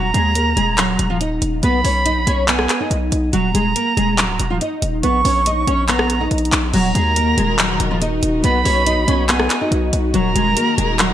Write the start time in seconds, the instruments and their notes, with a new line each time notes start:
Already playing: 808-style bass D#1, flute A#5
0.14 808-style bass D#2, nylon-string guitar G#3 G#4, closed hi-hat
0.35 nylon-string guitar A#3 A#4, closed hi-hat
0.57 808-style bass D#1, nylon-string guitar G#3 G#4, closed hi-hat
0.77 nylon-string guitar F#3 F#4, clap, closed hi-hat
0.99 808-style bass D#1, closed hi-hat
1.10 nylon-string guitar F3 F4
1.21 nylon-string guitar D#4 D#5, closed hi-hat
1.42 808-style bass D#1, closed hi-hat
1.63 808-style bass B1, nylon-string guitar B3 B4, flute B5, closed hi-hat
1.84 808-style bass B1, nylon-string guitar C#4 C#5, open hi-hat
2.05 nylon-string guitar D#4 D#5, closed hi-hat
2.16 808-style bass A#1
2.27 808-style bass B1, nylon-string guitar C#4 C#5, closed hi-hat
2.48 nylon-string guitar B3 B4, flute G#5, clap, closed hi-hat
2.59 cross-stick
2.69 clap, closed hi-hat
2.80 nylon-string guitar D#4 D#5
2.91 808-style bass B1, closed hi-hat
3.12 808-style bass B1, closed hi-hat
3.33 808-style bass D#1, nylon-string guitar F#3 F#4, flute A#5, closed hi-hat
3.54 808-style bass D#1, nylon-string guitar G#3 G#4, closed hi-hat
3.76 nylon-string guitar A#3 A#4, closed hi-hat
3.97 808-style bass D#1, nylon-string guitar G#3 G#4, closed hi-hat
4.18 nylon-string guitar F#3 F#4, clap, closed hi-hat
4.29 808-style bass C#1
4.40 808-style bass D#1, closed hi-hat
4.50 nylon-string guitar F3 F4
4.61 nylon-string guitar D#4 D#5, closed hi-hat
4.82 808-style bass D#1, closed hi-hat
5.03 808-style bass A#1, nylon-string guitar B3 B4, flute C#6, closed hi-hat
5.25 808-style bass A#1, nylon-string guitar C#4 C#5, open hi-hat
5.46 nylon-string guitar D#4 D#5, closed hi-hat
5.67 808-style bass A#1, nylon-string guitar C#4 C#5, closed hi-hat
5.88 nylon-string guitar B3 B4, flute A#5, clap, closed hi-hat
5.99 cross-stick
6.10 closed hi-hat
6.20 nylon-string guitar D#4 D#5
6.31 808-style bass A#1, closed hi-hat
6.38 closed hi-hat
6.45 closed hi-hat
6.52 808-style bass A#1, clap, closed hi-hat
6.73 808-style bass D#1, string section D#3 D#4 F#4 A#4, nylon-string guitar F#3 F#4, flute A#5, closed hi-hat, crash
6.95 808-style bass D#2, nylon-string guitar G#3 G#4, closed hi-hat
7.16 nylon-string guitar A#3 A#4, closed hi-hat
7.37 808-style bass D#1, nylon-string guitar G#3 G#4, closed hi-hat
7.58 nylon-string guitar F#3 F#4, clap, closed hi-hat
7.80 808-style bass D#1, closed hi-hat
7.91 nylon-string guitar F3 F4
8.01 nylon-string guitar D#4 D#5, closed hi-hat
8.23 808-style bass D#1, closed hi-hat
8.44 808-style bass B1, string section B3, nylon-string guitar B3 B4, flute B5, closed hi-hat
8.65 808-style bass B1, nylon-string guitar C#4 C#5, open hi-hat
8.86 nylon-string guitar D#4 D#5, closed hi-hat
8.97 808-style bass A#1
9.08 808-style bass B1, nylon-string guitar C#4 C#5, closed hi-hat
9.29 nylon-string guitar B3 B4, flute G#5, clap, closed hi-hat
9.40 cross-stick
9.50 clap, closed hi-hat
9.61 nylon-string guitar D#4 D#5
9.71 808-style bass B1, closed hi-hat
9.93 808-style bass B1, closed hi-hat
10.14 808-style bass D#1, string section D#3 D#4 A#4, nylon-string guitar F#3 F#4, flute A#5, closed hi-hat
10.35 808-style bass D#1, nylon-string guitar G#3 G#4, closed hi-hat
10.56 nylon-string guitar A#3 A#4, closed hi-hat
10.78 808-style bass D#1, nylon-string guitar G#3 G#4, closed hi-hat
10.99 nylon-string guitar F#3 F#4, clap, closed hi-hat
11.10 808-style bass C#1